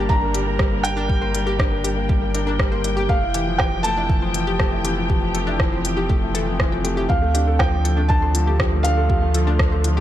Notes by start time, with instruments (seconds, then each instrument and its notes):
Already playing: sub bass G1, grand piano G3 A#3 D4 A#4, string section G3 D4 A#4, felt piano A5
0.09 grand piano D4, synth arpeggio sound G4, felt piano A#5, kick
0.22 grand piano A#4, string section G5
0.34 grand piano G3, synth arpeggio sound G4, closed hi-hat
0.47 grand piano A#3
0.59 grand piano G3, synth arpeggio sound G4, kick, cross-stick
0.71 grand piano A#3
0.83 grand piano D4, synth arpeggio sound A#4, felt piano G5, closed hi-hat
0.96 synth arpeggio sound D4, grand piano A#4
1.08 grand piano G3, kick
1.21 grand piano A#3, synth arpeggio sound C5
1.34 grand piano G3, closed hi-hat
1.46 grand piano A#3, synth arpeggio sound G4
1.59 grand piano D4, synth arpeggio sound G4, kick, cross-stick
1.72 grand piano A#4
1.84 grand piano G3, synth arpeggio sound G4, closed hi-hat
1.97 grand piano A#3
2.09 grand piano G3, synth arpeggio sound G4, kick
2.22 grand piano A#3
2.34 grand piano D4, synth arpeggio sound A#4, closed hi-hat
2.47 synth arpeggio sound D4, grand piano A#4
2.59 grand piano G3, kick, cross-stick
2.71 grand piano A#3, synth arpeggio sound C5
2.84 grand piano G3, closed hi-hat
2.97 grand piano A#3, synth arpeggio sound G4
3.09 sub bass F1, grand piano A3, synth arpeggio sound G4, felt piano F5, kick
3.22 grand piano E4
3.26 string section G4
3.34 grand piano E3, synth arpeggio sound G4, closed hi-hat
3.47 grand piano F3
3.58 grand piano E3, synth arpeggio sound G4, felt piano G5, kick, cross-stick
3.68 string section C4
3.72 grand piano F3
3.83 grand piano A3, synth arpeggio sound A4, felt piano A5, closed hi-hat
3.97 synth arpeggio sound D4, grand piano E4
4.09 grand piano E3, kick
4.22 grand piano F3, synth arpeggio sound C5
4.34 grand piano E3, closed hi-hat
4.47 grand piano F3, synth arpeggio sound G4
4.59 grand piano A3, synth arpeggio sound G4, kick, cross-stick
4.72 grand piano E4
4.85 grand piano E3, synth arpeggio sound G4, closed hi-hat
4.97 grand piano F3
5.09 grand piano E3, synth arpeggio sound G4, kick
5.22 grand piano F3
5.34 grand piano A3, synth arpeggio sound A4, closed hi-hat
5.47 synth arpeggio sound D4, grand piano E4
5.59 grand piano E3, kick, cross-stick
5.72 grand piano F3, synth arpeggio sound C5
5.84 grand piano E3, closed hi-hat
5.97 grand piano F3, synth arpeggio sound G4
6.09 grand piano A3, synth arpeggio sound G4, kick
6.22 grand piano E4
6.34 grand piano E3, synth arpeggio sound A4, closed hi-hat
6.47 grand piano F3
6.59 grand piano E3, synth arpeggio sound F4, kick, cross-stick
6.72 grand piano F3, synth arpeggio sound G5
6.84 grand piano A3, synth arpeggio sound G4, closed hi-hat
6.97 grand piano E4, synth arpeggio sound G4
7.09 sub bass D2, string section D3, grand piano F3, synth arpeggio sound G4, felt piano F5, kick
7.22 grand piano A3
7.34 grand piano D4, synth arpeggio sound G4, closed hi-hat
7.47 grand piano A4
7.55 string section A3
7.59 grand piano F3, synth arpeggio sound G4, felt piano G5, kick, cross-stick
7.73 grand piano A3
7.85 grand piano F3, synth arpeggio sound A4, closed hi-hat
7.97 grand piano A3, synth arpeggio sound D4
8.09 grand piano D4, felt piano A5, kick
8.22 grand piano A4, synth arpeggio sound C5
8.34 grand piano F3, closed hi-hat
8.47 grand piano A3, synth arpeggio sound G4
8.60 grand piano F3, synth arpeggio sound G4, kick, cross-stick
8.67 string section F4
8.73 grand piano A3
8.83 grand piano D4, synth arpeggio sound G4, felt piano F5, closed hi-hat
8.97 grand piano A4
9.10 grand piano F3, synth arpeggio sound G4, kick
9.22 grand piano A3
9.34 grand piano F3, synth arpeggio sound A4, closed hi-hat
9.47 grand piano A3, synth arpeggio sound D4
9.59 grand piano D4, kick, cross-stick
9.72 grand piano A4, synth arpeggio sound C5
9.84 grand piano F3, closed hi-hat
9.97 grand piano A3, synth arpeggio sound G4